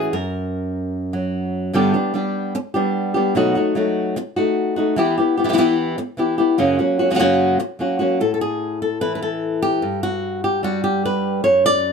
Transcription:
Already playing: nylon-string guitar A2 E3 C#4 F#4 G#4
0.13 nylon-string guitar F#2 A#4
1.13 nylon-string guitar F#3
1.73 nylon-string guitar G2 D3 G3 B3 D4 G4
1.94 nylon-string guitar G3 B3 D4 G4
2.14 nylon-string guitar G3 B3 D4 G4
2.55 muted nylon-string guitar stroke
2.74 nylon-string guitar G3 B3 D4 G4
3.14 nylon-string guitar G3 B3 D4 G4
3.35 nylon-string guitar B2 F#3 A3 D#4 F#4
3.55 nylon-string guitar A3 D#4 F#4
3.75 nylon-string guitar F#3 A3 D#4 F#4
4.16 muted nylon-string guitar stroke
4.36 nylon-string guitar A3 D#4 F#4
4.76 nylon-string guitar A3 D#4 F#4
4.96 nylon-string guitar E3 B3 E4 G4
5.18 nylon-string guitar B3 E4 G4
5.37 nylon-string guitar B3 E4 G4
5.44 nylon-string guitar E3 B3 E4 G4
5.49 nylon-string guitar E3 B3 E4 G4
5.53 nylon-string guitar E3 B3 E4 G4
5.58 nylon-string guitar E3 B3 E4 G4
5.98 muted nylon-string guitar stroke
6.17 nylon-string guitar E3 B3 E4 G4
6.38 nylon-string guitar B3 E4 G4
6.58 nylon-string guitar F#2 C#3 F#3 A#3 C#4 F#4
6.79 nylon-string guitar F#3 A#3 C#4 F#4
6.99 nylon-string guitar F#3 A#3 C#4 F#4
7.10 nylon-string guitar C#3 F#3 A#3 C#4 F#4
7.15 nylon-string guitar C#3 F#3 A#3 C#4 F#4
7.19 nylon-string guitar F#2 C#3 F#3 A#3 C#4 F#4
7.59 muted nylon-string guitar stroke
7.79 nylon-string guitar F#3 A#3 C#4 F#4
7.99 nylon-string guitar F#3 A#3 C#4 F#4
8.20 nylon-string guitar A2 A4
8.34 nylon-string guitar A4
8.41 nylon-string guitar G#4
8.82 nylon-string guitar A4
9.01 nylon-string guitar E3 B4
9.15 nylon-string guitar B4
9.22 nylon-string guitar A4
9.62 nylon-string guitar G4
9.82 nylon-string guitar G2
10.03 nylon-string guitar F#4
10.44 nylon-string guitar G4
10.63 nylon-string guitar G3 F#4
10.84 nylon-string guitar G4
11.05 nylon-string guitar B4
11.44 nylon-string guitar F#2 C#5
11.66 nylon-string guitar D5

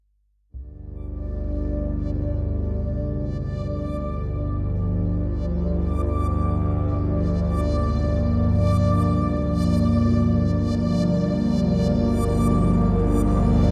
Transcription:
0.49 synth drone G1 D2, analog synth pad G2, synth texture D5
0.54 taiko
1.12 analog synth pad C3
2.97 analog synth pad F3
6.22 analog synth pad A#3

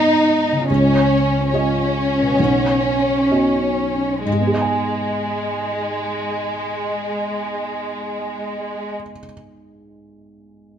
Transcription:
Already playing: harp G#2 B3 D#4 D#5, felt piano G#2 B3 D#4 D#5, violin section D#4
0.52 harp C#3
0.56 harp G#3
0.61 harp F4
0.65 violin section C#4, harp D#5
0.70 felt piano C#2
1.50 felt piano G#3 F4, violin section C#4
1.54 felt piano D#5
2.22 harp B2
2.26 harp B3
2.30 harp F#4
2.35 harp D#5
2.39 felt piano B1
3.31 felt piano B3 F#4 D#5
4.25 felt piano G#2, harp G#2, violin section G#3
4.33 felt piano G#3, harp G#3
4.40 felt piano B3, harp B3
4.47 harp G#4, felt piano G#4
4.54 felt piano D#5, harp D#5
4.61 harp G#5, felt piano G#5

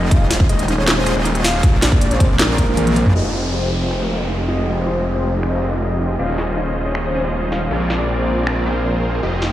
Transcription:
Already playing: detuned saw bass F1, analog synth pad D#4, soft synth lead D#5
0.11 detuned saw bass D#1, analog synth pad G#3 C#4, supersaw synth C#4 F4 G#4 C5 D#5, synth arpeggio sound D#4, soft synth lead F5, kick, closed hi-hat
0.21 synth arpeggio sound G#4
0.31 snare, closed hi-hat
0.40 synth arpeggio sound D#4, kick
0.49 synth arpeggio sound G#4, soft synth lead D#5, closed hi-hat
0.59 closed hi-hat
0.68 synth arpeggio sound D#4, closed hi-hat
0.78 synth arpeggio sound G#4, soft synth lead C#5
0.87 snare, closed hi-hat
0.97 synth arpeggio sound D#4, soft synth lead C5
1.06 detuned saw bass D#1, supersaw synth C#4 F4 G#4 C5 D#5, synth arpeggio sound G#4, closed hi-hat
1.16 detuned saw bass D#1, supersaw synth C#4 F4 G#4 C5 D#5
1.25 synth arpeggio sound D#4, closed hi-hat
1.35 synth arpeggio sound G#4, closed hi-hat
1.44 soft synth lead F5, snare, closed hi-hat
1.54 synth arpeggio sound D#4
1.63 detuned saw bass A#1, analog synth pad G#3 A#3 D4, supersaw synth C4 F4 G#4 A#4 D5, synth arpeggio sound G#4, kick, closed hi-hat
1.82 synth arpeggio sound D4, soft synth lead D5, snare, closed hi-hat
1.92 synth arpeggio sound G#4, kick
2.01 closed hi-hat
2.11 synth arpeggio sound D4, soft synth lead C5, closed hi-hat
2.20 synth arpeggio sound G#4, kick, closed hi-hat
2.39 synth arpeggio sound D4, soft synth lead A#4, snare, closed hi-hat
2.49 synth arpeggio sound G#4
2.58 detuned saw bass A#1, supersaw synth C4 F4 G#4 A#4 D5, synth arpeggio sound A#4, kick, closed hi-hat
2.68 detuned saw bass A#1, supersaw synth C4 F4 G#4 A#4 D5, synth arpeggio sound D4
2.77 synth arpeggio sound G#4, closed hi-hat, high tom
2.87 closed hi-hat, high tom
2.96 synth arpeggio sound C5, closed hi-hat
3.06 synth arpeggio sound A#4, mid tom
3.15 detuned saw bass F1, analog synth pad F3 G#3 D#4 G5, supersaw synth C4 F4 G4 G#4 D#5, synth arpeggio sound D#4, soft synth lead D#5, downlifter
3.25 synth arpeggio sound G4
3.34 snare
3.44 synth arpeggio sound D#4
3.53 synth arpeggio sound G4, soft synth lead C5
3.72 synth arpeggio sound D#4
3.82 synth arpeggio sound G4, soft synth lead C5
3.91 finger snap
4.01 synth arpeggio sound D#4, soft synth lead A#4
4.10 supersaw synth C4 F4 G4 G#4 D#5, synth arpeggio sound G4
4.20 supersaw synth C4 F4 G4 G#4 D#5
4.29 synth arpeggio sound D#4
4.39 synth arpeggio sound G4
4.48 soft synth lead D#5, snare
4.58 synth arpeggio sound D#4
4.67 supersaw synth C4 F4 G4 G#4 D#5, synth arpeggio sound G4
4.86 synth arpeggio sound D#4, soft synth lead C5, snare
4.96 synth arpeggio sound G4
5.15 synth arpeggio sound D#4, soft synth lead C5
5.24 synth arpeggio sound G4
5.43 synth arpeggio sound D#4, soft synth lead D#5, finger snap
5.53 synth arpeggio sound G4
5.62 supersaw synth C4 F4 G4 G#4 D#5
5.72 supersaw synth C4 F4 G4 G#4 D#5, synth arpeggio sound D#4
5.81 synth arpeggio sound G4
6.00 synth arpeggio sound D#4
6.10 synth arpeggio sound G4
6.19 detuned saw bass D#1, analog synth pad G#3 C#4, supersaw synth C#4 F4 G#4 C5 D#5, soft synth lead F5
6.29 synth arpeggio sound D#4
6.38 synth arpeggio sound G#4, snare
6.57 synth arpeggio sound D#4, soft synth lead D#5
6.67 synth arpeggio sound G#4
6.86 synth arpeggio sound D#4, soft synth lead C#5
6.95 synth arpeggio sound G#4, finger snap
7.04 soft synth lead C5
7.14 supersaw synth C#4 F4 G#4 C5 D#5, synth arpeggio sound D#4
7.24 supersaw synth C#4 F4 G#4 C5 D#5, synth arpeggio sound G#4
7.42 synth arpeggio sound D#4
7.52 synth arpeggio sound G#4, soft synth lead F5, snare
7.71 detuned saw bass A#1, analog synth pad A#3 D4, supersaw synth C4 F4 G#4 A#4 D5, synth arpeggio sound D4
7.80 synth arpeggio sound G#4
7.90 soft synth lead D5, snare
7.99 synth arpeggio sound D4
8.09 synth arpeggio sound G#4
8.18 soft synth lead C5
8.28 synth arpeggio sound D4
8.38 synth arpeggio sound G#4
8.47 soft synth lead A#4, finger snap
8.57 synth arpeggio sound D4
8.66 supersaw synth C4 F4 G#4 A#4 C5, synth arpeggio sound D4
8.85 synth arpeggio sound D5
9.04 synth arpeggio sound C5
9.22 detuned saw bass F1, analog synth pad F3 G#3 D#4, supersaw synth C4 F4 G4 G#4 D#5, synth arpeggio sound G4, soft synth lead D#5
9.42 synth arpeggio sound D#4, snare

